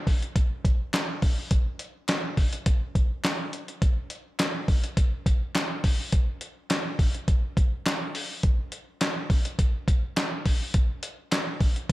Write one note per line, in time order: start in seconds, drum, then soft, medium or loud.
0.07 kick medium
0.07 open hi-hat medium
0.23 closed hi-hat medium
0.36 kick loud
0.36 closed hi-hat medium
0.65 kick loud
0.65 closed hi-hat medium
0.94 snare loud
0.94 clap medium
0.94 clap loud
0.94 closed hi-hat loud
1.22 kick medium
1.22 open hi-hat medium
1.51 kick loud
1.51 closed hi-hat medium
1.79 closed hi-hat medium
2.08 snare loud
2.08 clap medium
2.08 closed hi-hat loud
2.37 kick medium
2.37 open hi-hat medium
2.53 closed hi-hat medium
2.66 kick loud
2.66 closed hi-hat medium
2.95 kick loud
2.95 closed hi-hat medium
3.24 snare loud
3.24 clap medium
3.24 closed hi-hat medium
3.53 closed hi-hat medium
3.68 closed hi-hat medium
3.82 kick loud
3.82 closed hi-hat medium
4.10 closed hi-hat medium
4.39 snare loud
4.39 clap loud
4.39 clap medium
4.39 closed hi-hat loud
4.68 kick medium
4.68 open hi-hat medium
4.84 closed hi-hat soft
4.97 kick loud
4.97 closed hi-hat medium
5.26 kick loud
5.26 closed hi-hat medium
5.55 snare loud
5.55 clap loud
5.55 closed hi-hat medium
5.84 kick medium
5.84 open hi-hat medium
6.12 kick loud
6.12 closed hi-hat medium
6.41 closed hi-hat medium
6.70 snare loud
6.70 clap medium
6.70 closed hi-hat loud
6.99 kick medium
6.99 open hi-hat medium
7.14 closed hi-hat soft
7.28 kick loud
7.28 closed hi-hat medium
7.57 kick loud
7.57 closed hi-hat medium
7.86 snare loud
7.86 clap medium
7.86 closed hi-hat medium
8.15 open hi-hat medium
8.43 kick loud
8.43 closed hi-hat medium
8.72 closed hi-hat medium
9.01 snare loud
9.01 clap medium
9.01 closed hi-hat loud
9.30 kick medium
9.30 open hi-hat medium
9.45 closed hi-hat medium
9.59 kick loud
9.59 closed hi-hat medium
9.88 kick loud
9.88 closed hi-hat medium
10.17 snare loud
10.17 clap medium
10.17 closed hi-hat medium
10.46 kick medium
10.46 open hi-hat medium
10.74 kick loud
10.74 closed hi-hat medium
11.03 closed hi-hat medium
11.32 snare loud
11.32 clap medium
11.32 closed hi-hat loud
11.60 kick medium
11.60 open hi-hat medium
11.76 closed hi-hat soft